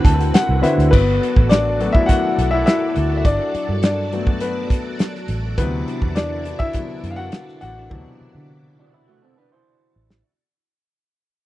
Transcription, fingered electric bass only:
0.05 0.30 D2 medium
0.34 muted fingered electric bass stroke soft
0.49 0.62 C2 medium
0.78 0.91 D2 medium
0.93 1.18 G1 loud
1.37 1.87 A1 medium
2.38 2.64 B1 medium
2.97 3.22 D2 loud
3.25 3.38 G1 loud
3.55 muted fingered electric bass stroke soft
3.69 4.81 G2 medium
5.29 5.54 A1 loud
5.58 5.83 D2 loud
6.02 6.53 E2 medium
7.04 7.29 F#2 medium
7.62 7.88 A1 medium
7.91 8.04 D2 loud
8.21 muted fingered electric bass stroke soft
8.35 9.47 D3 medium
9.96 10.21 A1 medium

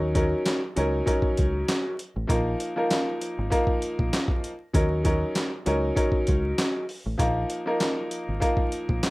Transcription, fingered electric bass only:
0.00 0.33 D#2 loud
0.77 1.01 C#2 medium
1.39 1.63 C#2 medium
2.16 2.27 A1 medium
2.30 2.54 A#1 loud
3.39 3.49 G#1 medium
4.00 4.10 A#1 medium
4.75 5.23 D#2 loud
5.67 5.91 C#2 medium
6.29 6.52 C#2 medium
7.06 7.17 A1 medium
7.20 7.44 A#1 loud
8.28 8.39 G#1 medium
8.89 9.00 A#1 medium

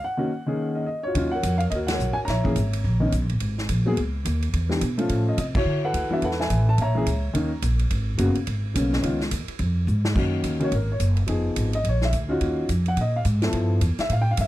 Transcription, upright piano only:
0.04 0.84 F#5 medium
0.17 0.28 D#3 medium
0.17 0.29 A#3 medium
0.17 0.29 C#4 medium
0.17 0.29 F#4 medium
0.46 0.84 D#3 medium
0.46 0.84 A#3 medium
0.46 0.84 C#4 medium
0.46 0.85 G#4 medium
0.75 0.85 D#5 medium
0.86 1.02 D#5 medium
1.03 1.15 F4 medium
1.03 1.58 F#4 medium
1.03 1.33 C#5 medium
1.15 1.30 D#3 medium
1.15 1.30 F#3 medium
1.15 1.31 C#4 medium
1.15 1.31 F4 medium
1.31 1.74 A#4 medium
1.31 1.86 C#5 medium
1.31 1.58 F#5 loud
1.58 1.63 F5 medium
1.70 1.75 D#5 medium
1.75 2.26 F#4 medium
1.75 1.90 A#4 medium
1.87 2.17 F#5 medium
1.92 2.27 A#4 medium
1.92 2.27 C#5 medium
2.13 2.18 G#5 loud
2.25 3.07 A#5 medium
2.30 3.09 C#5 medium
2.30 2.81 E5 medium
2.44 2.54 E3 medium
2.44 2.55 A#3 medium
2.44 2.55 C#4 medium
2.44 2.55 G#4 medium
3.00 3.10 D#3 medium
3.00 3.11 B3 medium
3.00 3.11 C#4 medium
3.00 3.11 D#4 medium
3.85 3.95 F#3 medium
3.85 3.96 A#3 medium
3.85 3.96 B3 medium
3.85 3.96 G#4 medium
4.69 4.80 E3 medium
4.69 4.80 B3 medium
4.69 4.80 D4 medium
4.69 4.80 G4 medium
4.97 5.35 F3 medium
4.97 5.35 A3 medium
4.97 5.35 C#4 medium
4.97 5.36 F4 medium
5.29 5.37 D#5 medium
5.39 5.44 D#5 medium
5.56 6.08 E4 medium
5.56 6.08 F#4 medium
5.56 5.82 C#5 loud
5.85 6.22 A4 medium
5.85 6.23 B4 medium
5.85 6.12 F#5 loud
6.10 6.21 E3 medium
6.10 6.21 B3 medium
6.10 6.21 D4 medium
6.10 6.21 F#4 medium
6.10 6.23 E5 medium
6.24 6.75 A4 medium
6.24 6.38 B4 medium
6.24 6.30 F#5 medium
6.40 6.76 B4 medium
6.40 6.76 E5 medium
6.40 6.66 G#5 medium
6.69 6.78 A5 medium
6.81 7.60 C#5 medium
6.81 7.32 E5 medium
6.81 7.60 A#5 loud
6.95 7.05 E3 medium
6.95 7.06 A#3 medium
6.95 7.06 C#4 medium
6.95 7.06 G#4 medium
7.33 7.49 D#3 medium
7.33 7.49 A#3 medium
7.33 7.50 C#4 medium
7.33 7.50 D#4 medium
8.18 8.33 C#3 medium
8.18 8.34 A#3 medium
8.18 8.34 B3 medium
8.18 8.34 F#4 medium
8.74 9.03 C#3 medium
8.74 9.03 A#3 medium
8.74 9.01 B3 medium
8.74 9.02 C#4 medium
9.02 9.18 D#3 medium
9.02 9.18 B3 medium
9.02 9.18 C#4 medium
9.02 9.19 F4 medium
10.15 10.57 D#3 medium
10.15 10.57 A#3 medium
10.15 10.58 C#4 medium
10.15 10.58 F#4 medium
10.60 10.70 D#3 medium
10.60 10.71 A#3 medium
10.60 10.71 C#4 medium
10.60 10.71 F#4 medium
10.60 10.73 C#5 medium
10.75 10.90 A#4 medium
10.92 11.01 C#5 medium
11.27 11.69 F3 medium
11.27 11.70 B3 medium
11.27 11.70 D#4 medium
11.27 11.70 G#4 medium
11.75 11.85 D#5 loud
11.88 12.03 C#5 medium
12.05 12.14 E5 medium
12.29 12.66 C#4 medium
12.29 12.67 D#4 medium
12.29 12.66 F4 medium
12.29 12.67 F#4 medium
12.88 12.98 F#5 loud
13.01 13.16 D#5 medium
13.16 13.22 F5 medium
13.42 13.79 F3 medium
13.42 13.79 B3 medium
13.42 13.80 E4 medium
13.42 13.80 A4 medium
14.00 14.10 E5 loud
14.12 14.20 F5 medium
14.22 14.29 G5 loud
14.31 14.39 F5 medium
14.41 14.47 E5 medium

